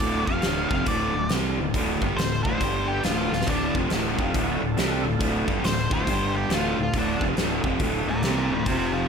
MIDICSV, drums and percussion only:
0, 0, Header, 1, 2, 480
1, 0, Start_track
1, 0, Key_signature, -1, "minor"
1, 0, Tempo, 432900
1, 2, Time_signature, 4, 2, 24, 8
1, 10069, End_track
2, 0, Start_track
2, 0, Title_t, "Drums"
2, 0, Note_on_c, 9, 36, 107
2, 0, Note_on_c, 9, 46, 48
2, 109, Note_off_c, 9, 46, 0
2, 110, Note_off_c, 9, 36, 0
2, 304, Note_on_c, 9, 36, 95
2, 415, Note_off_c, 9, 36, 0
2, 467, Note_on_c, 9, 46, 47
2, 479, Note_on_c, 9, 38, 101
2, 578, Note_off_c, 9, 46, 0
2, 590, Note_off_c, 9, 38, 0
2, 784, Note_on_c, 9, 36, 103
2, 895, Note_off_c, 9, 36, 0
2, 956, Note_on_c, 9, 46, 53
2, 961, Note_on_c, 9, 36, 98
2, 1067, Note_off_c, 9, 46, 0
2, 1072, Note_off_c, 9, 36, 0
2, 1435, Note_on_c, 9, 46, 49
2, 1447, Note_on_c, 9, 38, 98
2, 1546, Note_off_c, 9, 46, 0
2, 1558, Note_off_c, 9, 38, 0
2, 1930, Note_on_c, 9, 36, 103
2, 1938, Note_on_c, 9, 46, 51
2, 2041, Note_off_c, 9, 36, 0
2, 2049, Note_off_c, 9, 46, 0
2, 2237, Note_on_c, 9, 36, 93
2, 2348, Note_off_c, 9, 36, 0
2, 2423, Note_on_c, 9, 46, 49
2, 2435, Note_on_c, 9, 38, 102
2, 2534, Note_off_c, 9, 46, 0
2, 2546, Note_off_c, 9, 38, 0
2, 2581, Note_on_c, 9, 38, 29
2, 2692, Note_off_c, 9, 38, 0
2, 2716, Note_on_c, 9, 36, 104
2, 2827, Note_off_c, 9, 36, 0
2, 2890, Note_on_c, 9, 46, 45
2, 2891, Note_on_c, 9, 36, 100
2, 3001, Note_off_c, 9, 46, 0
2, 3002, Note_off_c, 9, 36, 0
2, 3366, Note_on_c, 9, 46, 48
2, 3378, Note_on_c, 9, 38, 101
2, 3477, Note_off_c, 9, 46, 0
2, 3489, Note_off_c, 9, 38, 0
2, 3692, Note_on_c, 9, 38, 53
2, 3786, Note_off_c, 9, 38, 0
2, 3786, Note_on_c, 9, 38, 72
2, 3849, Note_on_c, 9, 46, 46
2, 3855, Note_on_c, 9, 36, 97
2, 3897, Note_off_c, 9, 38, 0
2, 3960, Note_off_c, 9, 46, 0
2, 3966, Note_off_c, 9, 36, 0
2, 4157, Note_on_c, 9, 36, 92
2, 4268, Note_off_c, 9, 36, 0
2, 4326, Note_on_c, 9, 46, 46
2, 4339, Note_on_c, 9, 38, 103
2, 4437, Note_off_c, 9, 46, 0
2, 4449, Note_off_c, 9, 38, 0
2, 4641, Note_on_c, 9, 36, 102
2, 4752, Note_off_c, 9, 36, 0
2, 4817, Note_on_c, 9, 36, 98
2, 4817, Note_on_c, 9, 46, 50
2, 4928, Note_off_c, 9, 36, 0
2, 4928, Note_off_c, 9, 46, 0
2, 5296, Note_on_c, 9, 46, 49
2, 5308, Note_on_c, 9, 38, 104
2, 5406, Note_off_c, 9, 46, 0
2, 5419, Note_off_c, 9, 38, 0
2, 5772, Note_on_c, 9, 46, 48
2, 5773, Note_on_c, 9, 36, 108
2, 5883, Note_off_c, 9, 46, 0
2, 5884, Note_off_c, 9, 36, 0
2, 6075, Note_on_c, 9, 36, 93
2, 6186, Note_off_c, 9, 36, 0
2, 6256, Note_on_c, 9, 46, 51
2, 6268, Note_on_c, 9, 38, 100
2, 6367, Note_off_c, 9, 46, 0
2, 6379, Note_off_c, 9, 38, 0
2, 6411, Note_on_c, 9, 38, 29
2, 6522, Note_off_c, 9, 38, 0
2, 6555, Note_on_c, 9, 36, 108
2, 6666, Note_off_c, 9, 36, 0
2, 6733, Note_on_c, 9, 36, 103
2, 6742, Note_on_c, 9, 46, 52
2, 6844, Note_off_c, 9, 36, 0
2, 6853, Note_off_c, 9, 46, 0
2, 7209, Note_on_c, 9, 46, 49
2, 7221, Note_on_c, 9, 38, 108
2, 7320, Note_off_c, 9, 46, 0
2, 7332, Note_off_c, 9, 38, 0
2, 7691, Note_on_c, 9, 36, 97
2, 7691, Note_on_c, 9, 46, 47
2, 7801, Note_off_c, 9, 36, 0
2, 7802, Note_off_c, 9, 46, 0
2, 7995, Note_on_c, 9, 36, 92
2, 8105, Note_off_c, 9, 36, 0
2, 8171, Note_on_c, 9, 46, 48
2, 8183, Note_on_c, 9, 38, 105
2, 8282, Note_off_c, 9, 46, 0
2, 8294, Note_off_c, 9, 38, 0
2, 8470, Note_on_c, 9, 36, 97
2, 8581, Note_off_c, 9, 36, 0
2, 8644, Note_on_c, 9, 46, 47
2, 8648, Note_on_c, 9, 36, 104
2, 8755, Note_off_c, 9, 46, 0
2, 8758, Note_off_c, 9, 36, 0
2, 9123, Note_on_c, 9, 46, 49
2, 9136, Note_on_c, 9, 38, 108
2, 9234, Note_off_c, 9, 46, 0
2, 9247, Note_off_c, 9, 38, 0
2, 9601, Note_on_c, 9, 46, 48
2, 9605, Note_on_c, 9, 36, 99
2, 9712, Note_off_c, 9, 46, 0
2, 9716, Note_off_c, 9, 36, 0
2, 10069, End_track
0, 0, End_of_file